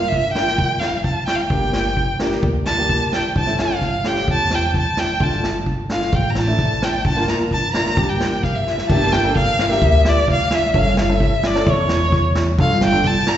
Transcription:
0.00 0.21 G1 medium
0.08 0.32 E5 medium
0.12 kick medium
0.12 snare soft
0.32 0.82 A#3 medium
0.32 0.82 D4 medium
0.32 0.81 G5 loud
0.32 snare medium
0.37 0.82 F4 medium
0.48 snare medium
0.58 1.14 F2 medium
0.58 kick medium
0.80 1.04 F5 medium
0.80 snare medium
0.93 snare soft
1.04 1.25 A5 medium
1.04 kick medium
1.26 1.37 G5 medium
1.26 snare medium
1.36 1.43 F5 medium
1.36 snare soft
1.41 2.43 G5 medium
1.50 2.06 G1 medium
1.50 1.86 A#3 medium
1.50 1.86 D4 medium
1.50 1.86 G4 medium
1.50 kick medium
1.73 snare medium
1.85 snare soft
1.97 kick medium
2.19 2.49 A#3 medium
2.19 2.49 D4 medium
2.19 2.50 G4 medium
2.19 snare medium
2.31 snare medium
2.43 2.98 D2 loud
2.43 kick loud
2.66 3.10 A5 loud
2.66 snare medium
2.78 3.07 A#3 medium
2.78 3.07 D4 medium
2.78 3.08 G4 medium
2.89 kick medium
2.89 snare soft
3.01 snare soft
3.13 3.35 G5 medium
3.13 snare medium
3.36 3.91 G1 medium
3.36 3.42 C#4 soft
3.36 3.42 E4 soft
3.36 3.58 A5 medium
3.36 kick medium
3.46 3.76 A3 medium
3.46 3.76 C#4 medium
3.46 3.76 E4 medium
3.46 snare soft
3.58 4.09 F5 medium
3.58 snare medium
3.70 snare soft
3.81 kick medium
3.81 snare soft
4.04 4.51 A3 medium
4.04 4.52 C#4 medium
4.04 4.52 G4 medium
4.04 4.30 G5 medium
4.04 snare medium
4.16 snare soft
4.28 4.83 E2 medium
4.28 kick medium
4.32 4.56 A5 medium
4.50 snare medium
4.55 4.76 G5 medium
4.62 snare soft
4.74 5.01 A5 medium
4.74 kick medium
4.74 snare soft
4.97 5.25 G5 medium
4.97 snare medium
5.20 5.76 G1 medium
5.20 5.55 A3 medium
5.20 5.56 D4 medium
5.20 5.56 F4 medium
5.20 5.45 A5 medium
5.20 kick medium
5.32 snare soft
5.44 snare medium
5.66 kick medium
5.89 6.19 A3 medium
5.89 6.19 D4 medium
5.89 6.19 F4 medium
5.89 6.16 F5 medium
5.89 snare medium
6.01 snare soft
6.13 6.68 A1 medium
6.13 6.32 G5 medium
6.13 kick loud
6.13 snare soft
6.30 6.40 A#5 medium
6.35 6.85 A5 medium
6.35 snare medium
6.47 6.76 A3 medium
6.47 6.76 D4 medium
6.47 6.77 E4 medium
6.47 snare soft
6.59 kick medium
6.59 snare soft
6.82 7.06 G5 medium
6.82 snare loud
7.05 7.60 G1 loud
7.05 7.12 D4 soft
7.05 7.12 F4 soft
7.05 7.28 A5 medium
7.05 kick medium
7.16 7.45 A#3 medium
7.16 7.46 D4 medium
7.16 7.46 F4 medium
7.16 snare soft
7.28 7.40 A#5 medium
7.28 snare medium
7.40 snare soft
7.51 7.74 A5 medium
7.51 kick medium
7.73 7.95 A#3 medium
7.73 7.96 D4 medium
7.73 7.98 F4 medium
7.73 7.99 A#5 loud
7.73 snare medium
7.86 snare soft
7.96 8.52 G1 medium
7.96 8.71 A#3 medium
7.96 8.71 D4 medium
7.96 8.71 G4 medium
7.96 8.11 A5 medium
7.96 kick loud
8.09 8.46 G5 medium
8.20 snare medium
8.32 snare soft
8.43 8.56 F5 medium
8.43 kick medium
8.43 snare soft
8.55 8.89 E5 medium
8.67 snare soft
8.78 snare medium
8.89 9.45 G1 loud
8.89 9.07 A#3 medium
8.89 9.07 D4 medium
8.89 9.07 G4 medium
8.89 9.14 A5 loud
8.89 kick medium
8.89 crash medium
9.01 snare soft
9.12 9.36 G5 medium
9.12 snare loud
9.24 9.47 A#3 medium
9.24 9.48 D4 medium
9.24 9.48 A4 medium
9.36 9.63 F5 loud
9.36 kick medium
9.36 snare soft
9.59 10.11 E5 loud
9.59 snare medium
9.69 10.16 A#3 medium
9.69 10.16 D4 medium
9.69 10.17 G4 medium
9.69 snare medium
9.82 10.75 D2 loud
9.82 kick medium
10.05 snare loud
10.09 10.30 D5 medium
10.17 snare soft
10.28 10.57 F5 medium
10.28 kick medium
10.28 snare soft
10.39 snare soft
10.51 snare loud
10.55 10.80 E5 medium
10.63 snare soft
10.74 11.29 G1 loud
10.74 10.92 C#4 medium
10.74 10.92 E4 medium
10.74 10.92 A4 medium
10.74 kick medium
10.78 10.99 F5 medium
10.86 snare soft
10.97 snare loud
11.01 11.48 E5 medium
11.09 11.31 C#4 medium
11.09 11.32 E4 medium
11.09 11.32 A4 medium
11.20 kick medium
11.43 11.71 D5 medium
11.43 snare medium
11.54 12.00 C#4 medium
11.54 12.01 E4 medium
11.54 12.01 A4 medium
11.54 snare medium
11.67 12.60 E2 loud
11.67 12.37 C#5 medium
11.67 kick loud
11.89 snare loud
12.12 kick medium
12.12 snare soft
12.35 snare medium
12.58 13.14 G1 loud
12.58 12.75 D4 medium
12.58 12.75 F4 medium
12.58 12.76 A4 medium
12.58 12.81 F5 loud
12.58 kick medium
12.70 snare soft
12.81 13.08 G5 loud
12.81 snare medium
12.92 13.15 D4 medium
12.92 13.15 F4 medium
12.92 13.16 A4 medium
12.92 snare soft
13.04 13.30 A5 loud
13.04 kick medium
13.27 13.37 A#5 loud
13.27 snare medium

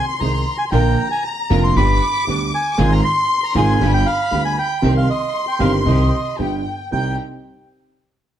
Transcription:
0.00 0.69 C6 loud
0.08 0.14 C6 loud
0.20 0.43 C2 medium
0.20 0.43 C3 medium
0.20 0.43 D#3 soft
0.20 0.43 G#3 soft
0.20 0.43 C4 soft
0.20 0.43 D#4 medium
0.20 0.43 G#4 soft
0.20 0.43 G#4 medium
0.20 0.43 C5 medium
0.20 0.57 A#5 loud
0.58 0.64 G#5 medium
0.71 0.94 A#1 medium
0.71 0.95 A#1 medium
0.71 0.94 A#2 medium
0.71 0.94 D3 medium
0.71 0.94 F3 medium
0.71 0.95 A#3 medium
0.71 0.95 D4 medium
0.71 0.95 F4 medium
0.71 0.95 A#4 medium
0.71 1.08 G5 loud
0.71 1.76 A#5 loud
1.11 1.24 G#5 loud
1.25 1.65 A#5 loud
1.50 1.72 F1 medium
1.50 1.72 F1 loud
1.50 1.72 F2 medium
1.50 1.72 D3 medium
1.50 1.72 F3 medium
1.50 1.72 A#3 medium
1.50 1.72 D4 medium
1.50 1.72 F4 medium
1.50 1.72 A#4 loud
1.64 1.75 C6 loud
1.76 1.98 G1 medium
1.76 1.98 G2 medium
1.76 1.98 D3 medium
1.76 1.98 G3 medium
1.76 1.98 B3 medium
1.76 1.98 D4 medium
1.76 1.98 G4 medium
1.76 1.98 B4 medium
1.76 2.24 B5 loud
1.76 2.67 D6 loud
2.27 2.49 D2 medium
2.27 2.49 D3 medium
2.27 2.49 G3 soft
2.27 2.49 B3 soft
2.27 2.49 D4 medium
2.27 2.49 G4 medium
2.27 2.49 G4 soft
2.27 2.49 B4 medium
2.55 2.93 G#5 loud
2.72 2.79 D6 medium
2.78 3.00 G#1 loud
2.78 3.00 G#2 medium
2.78 3.00 D#3 medium
2.78 3.00 G#3 medium
2.78 3.00 C4 medium
2.78 3.00 D#4 medium
2.78 3.00 F4 medium
2.78 3.00 G#4 medium
2.78 3.81 C6 loud
2.92 3.04 A#5 loud
3.05 3.40 C6 loud
3.44 3.56 A#5 loud
3.55 3.77 G#1 loud
3.55 3.77 G#1 medium
3.55 3.77 G#2 loud
3.55 3.77 D#3 medium
3.55 3.77 G#3 medium
3.55 3.77 C4 medium
3.55 3.77 D#4 medium
3.55 3.77 F4 medium
3.55 3.77 G#4 medium
3.55 3.92 G#5 loud
3.81 4.03 G1 medium
3.81 4.02 G2 medium
3.81 4.02 D3 medium
3.81 4.02 G3 medium
3.81 4.03 B3 medium
3.81 4.03 F4 medium
3.81 4.03 G4 loud
3.81 4.83 B5 loud
3.94 4.07 G5 loud
4.06 4.42 F5 loud
4.31 4.54 D2 medium
4.31 4.54 D3 medium
4.31 4.53 G3 soft
4.31 4.54 B3 soft
4.31 4.54 B3 medium
4.31 4.54 F4 medium
4.31 4.54 F4 soft
4.31 4.54 G4 medium
4.45 4.58 G#5 medium
4.59 4.94 G5 loud
4.82 5.04 C2 medium
4.82 5.05 C2 medium
4.82 5.04 C3 medium
4.82 5.04 D#3 medium
4.82 5.04 G3 medium
4.82 5.04 C4 medium
4.82 5.05 C4 medium
4.82 5.05 D#4 medium
4.82 5.04 G4 medium
4.82 5.05 G4 medium
4.82 6.39 C6 loud
4.97 5.09 F5 medium
5.10 5.45 D#5 medium
5.48 5.61 G5 medium
5.59 5.81 G1 medium
5.59 5.82 G1 medium
5.59 5.82 G2 medium
5.59 5.82 D#3 medium
5.59 5.82 G3 medium
5.59 5.82 C4 medium
5.59 5.82 D#4 medium
5.59 5.82 G4 medium
5.59 5.72 F5 medium
5.85 6.08 C2 medium
5.85 6.08 C3 medium
5.85 6.08 D#3 medium
5.85 6.08 G3 medium
5.85 6.08 C4 medium
5.85 6.09 D#4 medium
5.85 6.08 G4 medium
5.85 6.09 G4 medium
5.85 6.36 D#5 medium
6.39 6.61 G1 soft
6.39 6.61 G1 medium
6.39 6.61 G2 medium
6.39 6.61 D3 soft
6.39 6.61 G3 soft
6.39 6.61 B3 soft
6.39 6.61 F4 soft
6.39 6.62 G4 medium
6.39 6.91 G5 medium
6.92 7.14 C2 medium
6.92 7.14 G3 medium
6.92 7.14 C4 medium
6.92 7.14 C4 soft
6.92 7.14 D#4 soft
6.92 7.14 D#4 medium
6.92 7.14 G4 medium
6.92 7.16 G5 medium

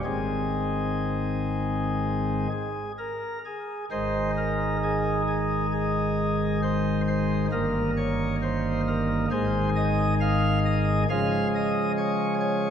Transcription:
0.04 2.47 G#1 soft
0.04 2.47 G#2 soft
0.04 2.47 D#3 soft
0.04 2.47 G#3 soft
0.04 2.47 C4 soft
0.04 2.49 G#4 medium
2.51 2.92 G#4 medium
2.98 3.38 A#4 medium
3.45 3.85 G#4 medium
3.91 7.48 G#1 medium
3.91 7.48 G#2 medium
3.91 7.48 D#3 medium
3.91 7.48 G#3 soft
3.91 7.48 D#4 soft
3.91 4.30 C5 medium
4.37 4.76 A#4 medium
4.83 5.22 G#4 medium
5.28 5.66 G#4 medium
5.72 6.60 G#4 medium
6.63 7.01 C5 medium
7.08 7.46 C5 medium
7.52 9.27 G1 medium
7.52 9.27 G2 medium
7.52 9.27 D#3 soft
7.52 9.27 A#3 soft
7.52 9.28 D#4 medium
7.52 7.90 A#4 medium
7.97 8.35 C#5 medium
8.42 8.80 C5 medium
8.88 9.25 A#4 medium
9.31 11.05 G#1 medium
9.31 11.05 G#2 medium
9.31 11.06 D#3 soft
9.31 11.05 G#3 medium
9.31 11.05 G#4 soft
9.31 9.69 C5 medium
9.76 10.14 D#5 loud
10.21 10.59 F5 loud
10.65 11.03 D#5 loud
11.09 12.70 C#3 medium
11.09 12.70 F3 medium
11.09 12.70 G#3 medium
11.09 12.70 G#4 medium
11.09 11.47 F5 loud
11.55 11.91 D#5 medium
11.98 12.34 C#5 loud
12.40 12.70 C#5 medium

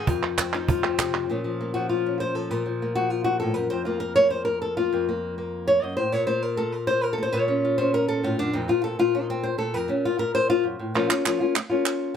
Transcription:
0.07 1.29 F2 medium
0.07 0.68 F4 loud
0.07 cajon bass medium
0.38 0.54 C4 medium
0.38 cajon slap loud
0.38 clap medium
0.53 1.28 F3 medium
0.53 0.85 D#4 medium
0.53 clap medium
0.68 1.30 F4 medium
0.68 cajon bass loud
0.85 1.14 C4 soft
0.98 1.27 C3 medium
0.98 cajon slap loud
0.98 clap medium
1.14 1.30 C4 soft
1.14 cajon slap soft
1.14 clap soft
1.29 2.49 A#2 medium
1.29 1.44 F3 soft
1.29 1.60 A#3 soft
1.29 2.05 C#4 soft
1.44 1.75 F3 medium
1.61 2.82 A#3 medium
1.74 2.34 F3 medium
1.74 1.89 F#4 medium
1.89 2.20 F4 medium
2.06 2.49 C#4 soft
2.20 2.35 C5 medium
2.35 2.65 F3 medium
2.35 2.51 A4 medium
2.51 3.72 A#2 medium
2.51 2.66 A#4 medium
2.66 2.96 F3 medium
2.82 3.73 A#3 medium
2.95 3.86 F3 medium
2.95 3.10 F#4 medium
3.10 3.24 F4 medium
3.24 3.39 F#4 loud
3.40 3.56 A2 medium
3.40 3.54 A4 medium
3.54 3.71 F#2 medium
3.54 3.70 A#4 medium
3.70 4.91 F2 medium
3.70 3.85 C5 medium
3.85 4.16 A#3 medium
3.85 4.00 F4 soft
4.00 4.15 A#4 medium
4.16 4.77 A#3 medium
4.16 4.30 C#5 loud
4.30 4.44 C5 medium
4.45 4.61 A#4 loud
4.62 4.77 A4 medium
4.77 4.93 A#3 medium
4.77 5.07 F4 medium
4.93 5.83 F2 medium
4.93 5.08 A#3 medium
5.09 5.37 A#3 medium
5.38 6.27 A#3 medium
5.68 5.82 C#5 loud
5.82 5.98 F#2 medium
5.82 5.96 D#5 loud
5.97 6.13 A2 medium
5.97 6.12 C5 medium
6.12 7.32 A#2 medium
6.12 6.26 C#5 medium
6.27 6.58 A#3 medium
6.27 6.42 C5 medium
6.42 6.58 A#4 medium
6.57 7.18 A#3 medium
6.57 6.73 A4 loud
6.72 6.87 A#4 medium
6.87 7.04 C5 loud
7.04 7.14 A#4 medium
7.13 7.23 A4 medium
7.18 7.48 A#3 medium
7.23 7.33 C5 medium
7.32 8.54 A#2 medium
7.32 7.78 C#5 medium
7.48 7.78 C#4 medium
7.65 8.24 F4 medium
7.78 8.39 C#4 medium
7.78 7.93 C5 loud
7.94 8.08 A#4 loud
8.08 8.24 A4 loud
8.23 8.39 A2 medium
8.23 8.39 F4 medium
8.39 8.54 F#2 medium
8.39 8.54 D4 loud
8.53 8.69 F2 medium
8.53 8.67 A#2 soft
8.53 9.29 C4 soft
8.53 8.69 D#4 medium
8.68 8.98 A#2 medium
8.68 8.83 F4 medium
8.84 8.99 A4 loud
8.99 9.57 A#2 medium
8.99 9.14 F4 loud
9.15 9.29 D#4 medium
9.30 9.45 C4 loud
9.43 9.58 C5 medium
9.58 9.74 A#2 medium
9.58 9.74 A4 loud
9.74 9.89 F2 medium
9.74 9.89 A#4 loud
9.88 10.17 A#2 medium
9.88 10.04 C#4 medium
10.05 10.19 F4 medium
10.18 10.93 A#2 medium
10.18 10.34 A#4 loud
10.35 10.49 C5 loud
10.50 10.65 F4 loud
10.63 10.79 F#2 medium
10.79 10.94 A2 medium
10.95 11.09 A#2 medium
10.95 11.09 F3 medium
10.95 11.09 A#3 medium
10.95 11.09 C#4 medium
10.95 11.08 F4 medium
11.09 11.24 A#3 soft
11.09 11.24 C#4 soft
11.09 11.24 F4 medium
11.09 clap medium
11.25 11.39 F3 medium
11.25 11.39 A#3 medium
11.25 11.40 C#4 medium
11.25 11.39 F4 medium
11.25 clap medium
11.40 11.55 A#3 soft
11.40 11.55 C#4 soft
11.40 11.54 F4 medium
11.55 muted nylon-string guitar stroke medium
11.55 clap medium
11.70 12.15 A#3 soft
11.70 12.14 C#4 medium
11.70 12.15 F4 medium
11.86 clap medium

